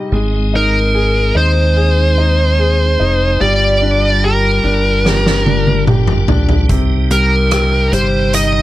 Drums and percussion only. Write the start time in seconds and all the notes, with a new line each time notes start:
5.06 snare
5.26 snare
5.46 high tom
5.67 high tom
5.87 mid tom
6.07 mid tom
6.28 floor tom
6.49 floor tom
6.69 kick, closed hi-hat
7.11 closed hi-hat
7.51 cross-stick, closed hi-hat
7.93 closed hi-hat
8.33 closed hi-hat